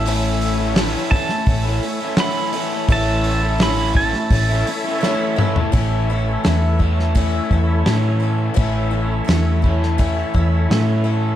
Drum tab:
HH |o-o-o-o-o-o-o-o-|o-o-o-o-o-o-----|o---o---o---o---|o---o---o---o---|
SD |----o--o----o---|----o--o----o---|----o--o----o---|----o--o----o---|
T2 |----------------|--------------o-|----------------|----------------|
FT |----------------|---------------o|----------------|----------------|
BD |------o-o-------|o-----o-o-------|o-----o-o-o-----|o-----o-o-o-----|